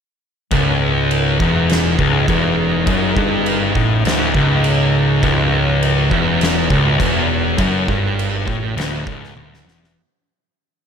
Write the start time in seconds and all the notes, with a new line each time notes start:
0.51 C#1 C#2 C#3 D#4 G#4, kick, crash
1.11 crash
1.39 E1 E2, kick
1.70 snare, crash
1.98 C#1 C#2, kick
2.28 E1 E2, kick, crash
2.86 F#1 F#2, kick, crash
3.16 G1 G2, kick
3.46 crash
3.75 A1 A2, kick
4.05 D1 D2, snare, crash
4.34 C#1 C#2, kick
4.64 crash
5.23 C#1 C#2 F#3, kick, crash
5.83 crash
6.11 E1 E2, kick
6.41 snare, crash
6.70 C#1 C#2, kick
6.99 E1 E2, kick, crash
7.58 F#1 F#2, kick, crash
7.88 G1 G2, kick
8.19 crash
8.47 A1 A2, kick
8.75 D1 D2, crash
8.80 snare
9.06 C#1 C#2, kick
9.24 snare
9.35 D1 D2, high tom
9.54 snare
9.65 E1 E2, snare
9.84 snare